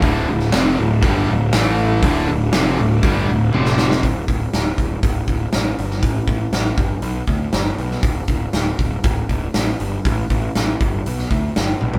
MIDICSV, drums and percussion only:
0, 0, Header, 1, 2, 480
1, 0, Start_track
1, 0, Tempo, 501672
1, 23, Time_signature, 4, 2, 24, 8
1, 11469, End_track
2, 0, Start_track
2, 0, Title_t, "Drums"
2, 22, Note_on_c, 9, 36, 92
2, 27, Note_on_c, 9, 46, 47
2, 118, Note_off_c, 9, 36, 0
2, 122, Note_off_c, 9, 46, 0
2, 379, Note_on_c, 9, 38, 31
2, 475, Note_off_c, 9, 38, 0
2, 501, Note_on_c, 9, 38, 105
2, 501, Note_on_c, 9, 46, 55
2, 596, Note_off_c, 9, 46, 0
2, 597, Note_off_c, 9, 38, 0
2, 981, Note_on_c, 9, 36, 108
2, 981, Note_on_c, 9, 46, 57
2, 1076, Note_off_c, 9, 46, 0
2, 1077, Note_off_c, 9, 36, 0
2, 1461, Note_on_c, 9, 46, 59
2, 1462, Note_on_c, 9, 38, 109
2, 1557, Note_off_c, 9, 46, 0
2, 1558, Note_off_c, 9, 38, 0
2, 1937, Note_on_c, 9, 46, 54
2, 1939, Note_on_c, 9, 36, 92
2, 2033, Note_off_c, 9, 46, 0
2, 2034, Note_off_c, 9, 36, 0
2, 2418, Note_on_c, 9, 46, 57
2, 2419, Note_on_c, 9, 38, 101
2, 2513, Note_off_c, 9, 46, 0
2, 2514, Note_off_c, 9, 38, 0
2, 2900, Note_on_c, 9, 36, 103
2, 2900, Note_on_c, 9, 46, 57
2, 2996, Note_off_c, 9, 36, 0
2, 2996, Note_off_c, 9, 46, 0
2, 3375, Note_on_c, 9, 48, 59
2, 3471, Note_off_c, 9, 48, 0
2, 3496, Note_on_c, 9, 38, 63
2, 3592, Note_off_c, 9, 38, 0
2, 3617, Note_on_c, 9, 38, 91
2, 3713, Note_off_c, 9, 38, 0
2, 3744, Note_on_c, 9, 38, 83
2, 3840, Note_off_c, 9, 38, 0
2, 3858, Note_on_c, 9, 46, 55
2, 3859, Note_on_c, 9, 36, 83
2, 3953, Note_off_c, 9, 46, 0
2, 3955, Note_off_c, 9, 36, 0
2, 4097, Note_on_c, 9, 36, 76
2, 4099, Note_on_c, 9, 46, 45
2, 4193, Note_off_c, 9, 36, 0
2, 4195, Note_off_c, 9, 46, 0
2, 4338, Note_on_c, 9, 46, 57
2, 4339, Note_on_c, 9, 38, 92
2, 4434, Note_off_c, 9, 46, 0
2, 4435, Note_off_c, 9, 38, 0
2, 4575, Note_on_c, 9, 36, 68
2, 4578, Note_on_c, 9, 46, 45
2, 4670, Note_off_c, 9, 36, 0
2, 4674, Note_off_c, 9, 46, 0
2, 4814, Note_on_c, 9, 36, 103
2, 4816, Note_on_c, 9, 46, 63
2, 4909, Note_off_c, 9, 36, 0
2, 4912, Note_off_c, 9, 46, 0
2, 5050, Note_on_c, 9, 36, 67
2, 5050, Note_on_c, 9, 46, 43
2, 5145, Note_off_c, 9, 46, 0
2, 5146, Note_off_c, 9, 36, 0
2, 5287, Note_on_c, 9, 46, 61
2, 5288, Note_on_c, 9, 38, 99
2, 5382, Note_off_c, 9, 46, 0
2, 5383, Note_off_c, 9, 38, 0
2, 5534, Note_on_c, 9, 46, 47
2, 5629, Note_off_c, 9, 46, 0
2, 5652, Note_on_c, 9, 38, 29
2, 5748, Note_off_c, 9, 38, 0
2, 5767, Note_on_c, 9, 36, 92
2, 5768, Note_on_c, 9, 46, 59
2, 5863, Note_off_c, 9, 36, 0
2, 5864, Note_off_c, 9, 46, 0
2, 6002, Note_on_c, 9, 46, 44
2, 6004, Note_on_c, 9, 36, 75
2, 6098, Note_off_c, 9, 46, 0
2, 6100, Note_off_c, 9, 36, 0
2, 6244, Note_on_c, 9, 46, 57
2, 6245, Note_on_c, 9, 38, 89
2, 6340, Note_off_c, 9, 46, 0
2, 6341, Note_off_c, 9, 38, 0
2, 6481, Note_on_c, 9, 46, 42
2, 6484, Note_on_c, 9, 36, 88
2, 6577, Note_off_c, 9, 46, 0
2, 6580, Note_off_c, 9, 36, 0
2, 6716, Note_on_c, 9, 46, 56
2, 6812, Note_off_c, 9, 46, 0
2, 6954, Note_on_c, 9, 46, 43
2, 6961, Note_on_c, 9, 36, 66
2, 7050, Note_off_c, 9, 46, 0
2, 7057, Note_off_c, 9, 36, 0
2, 7201, Note_on_c, 9, 46, 56
2, 7202, Note_on_c, 9, 38, 93
2, 7297, Note_off_c, 9, 46, 0
2, 7298, Note_off_c, 9, 38, 0
2, 7446, Note_on_c, 9, 46, 43
2, 7541, Note_off_c, 9, 46, 0
2, 7568, Note_on_c, 9, 38, 30
2, 7664, Note_off_c, 9, 38, 0
2, 7678, Note_on_c, 9, 46, 53
2, 7683, Note_on_c, 9, 36, 90
2, 7774, Note_off_c, 9, 46, 0
2, 7779, Note_off_c, 9, 36, 0
2, 7917, Note_on_c, 9, 46, 46
2, 7924, Note_on_c, 9, 36, 72
2, 8013, Note_off_c, 9, 46, 0
2, 8020, Note_off_c, 9, 36, 0
2, 8163, Note_on_c, 9, 46, 55
2, 8164, Note_on_c, 9, 38, 87
2, 8259, Note_off_c, 9, 46, 0
2, 8260, Note_off_c, 9, 38, 0
2, 8410, Note_on_c, 9, 36, 70
2, 8413, Note_on_c, 9, 46, 44
2, 8506, Note_off_c, 9, 36, 0
2, 8509, Note_off_c, 9, 46, 0
2, 8643, Note_on_c, 9, 46, 61
2, 8650, Note_on_c, 9, 36, 100
2, 8739, Note_off_c, 9, 46, 0
2, 8746, Note_off_c, 9, 36, 0
2, 8890, Note_on_c, 9, 46, 47
2, 8892, Note_on_c, 9, 36, 63
2, 8985, Note_off_c, 9, 46, 0
2, 8988, Note_off_c, 9, 36, 0
2, 9129, Note_on_c, 9, 46, 62
2, 9130, Note_on_c, 9, 38, 102
2, 9225, Note_off_c, 9, 46, 0
2, 9226, Note_off_c, 9, 38, 0
2, 9374, Note_on_c, 9, 46, 51
2, 9470, Note_off_c, 9, 46, 0
2, 9617, Note_on_c, 9, 46, 55
2, 9618, Note_on_c, 9, 36, 89
2, 9713, Note_off_c, 9, 36, 0
2, 9713, Note_off_c, 9, 46, 0
2, 9854, Note_on_c, 9, 46, 49
2, 9858, Note_on_c, 9, 36, 76
2, 9950, Note_off_c, 9, 46, 0
2, 9953, Note_off_c, 9, 36, 0
2, 10098, Note_on_c, 9, 46, 58
2, 10099, Note_on_c, 9, 38, 92
2, 10193, Note_off_c, 9, 46, 0
2, 10194, Note_off_c, 9, 38, 0
2, 10338, Note_on_c, 9, 46, 46
2, 10340, Note_on_c, 9, 36, 89
2, 10433, Note_off_c, 9, 46, 0
2, 10436, Note_off_c, 9, 36, 0
2, 10582, Note_on_c, 9, 46, 62
2, 10677, Note_off_c, 9, 46, 0
2, 10700, Note_on_c, 9, 38, 29
2, 10796, Note_off_c, 9, 38, 0
2, 10815, Note_on_c, 9, 46, 43
2, 10819, Note_on_c, 9, 36, 65
2, 10911, Note_off_c, 9, 46, 0
2, 10914, Note_off_c, 9, 36, 0
2, 11061, Note_on_c, 9, 46, 57
2, 11062, Note_on_c, 9, 38, 99
2, 11157, Note_off_c, 9, 46, 0
2, 11158, Note_off_c, 9, 38, 0
2, 11299, Note_on_c, 9, 48, 51
2, 11394, Note_off_c, 9, 48, 0
2, 11420, Note_on_c, 9, 43, 72
2, 11469, Note_off_c, 9, 43, 0
2, 11469, End_track
0, 0, End_of_file